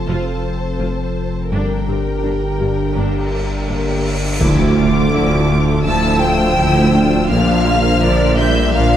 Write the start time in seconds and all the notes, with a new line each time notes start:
Already playing: F1 F3 C4 A4 C5 A5
0.07 F1 F2 F3 A3 C4 F4
0.79 F1 F2 A3 F4
1.51 G1 G2 D3 G3 A#3 D4 G4 A#4 G5, cymbal swell
1.87 G1 G2 C4 G4
2.24 G1 G2 D4
2.59 G1 G2 A#3 G4
2.95 G1 G2 G3 A#3 D4
3.68 G1 G2 A#3 D4
4.39 D1 D2 D3 F3 D4 E4 A4 E5 D6, impact
4.77 A3 F4
5.13 D2 F3 D4 E4
5.49 D3 A3 F4
5.85 D2 F3 D4 E4 A5 E6
6.21 A3 F4 G5
6.58 D2 D3 F3 E4
6.94 A3 D4 F4
7.30 A#1 A#2 F3 A#3 D4 F4 A#4 F5 F6
7.66 A#3 F4
8.02 A#1 A#2 F3 D4 A#4 D5
8.38 G3 A#3 F4 E5 G6
8.74 A#1 A#2 F3 D4 A#4 F5 F6